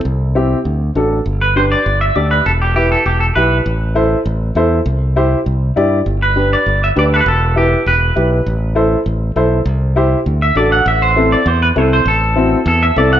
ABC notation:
X:1
M:4/4
L:1/16
Q:1/4=200
K:Ador
V:1 name="Clean electric guitar"
z16 | z2 B2 c2 d4 e2 d2 B2 | A2 G2 G2 A2 G2 A2 B3 z | z16 |
z16 | z2 B4 d4 e2 d2 B/2 A/2 B | A4 G4 B6 z2 | z16 |
z8 z2 e2 d2 f2 | e2 c4 d2 c2 B2 c2 c2 | A8 A2 e2 d2 f2 |]
V:2 name="Upright piano"
z4 [CEG]2 z6 [DFA]2 z2 | z4 [DGB]2 z6 [DGd]2 z2 | z4 [EGB]2 z6 [EGB]2 z2 | z4 [EAc]2 z6 [EAc]2 z2 |
z4 [EGc]2 z6 [EGd]2 z2 | z4 [DGB]2 z6 [DGB]2 z2 | z4 [EGB]2 z6 [EGB]2 z2 | z4 [EAc]2 z6 [EAc]2 z2 |
z4 [EGc]2 z6 [DFA]2 z2 | z4 [CEA]2 z6 [CEA]2 z2 | z4 [CEF]2 z6 [CEA]2 z2 |]
V:3 name="Fingered electric bass" clef=bass
C,,8 D,,4 A,,,4 | G,,,8 G,,,4 D,,4 | E,,,8 E,,,4 B,,,4 | A,,,8 A,,,4 E,,4 |
C,,8 C,,4 G,,4 | G,,,8 G,,,4 D,,4 | E,,,8 E,,,4 B,,,4 | A,,,8 A,,,4 B,,,4 |
C,,8 D,,4 A,,,4 | A,,,8 E,,4 C,,4 | A,,,8 E,,4 C,,4 |]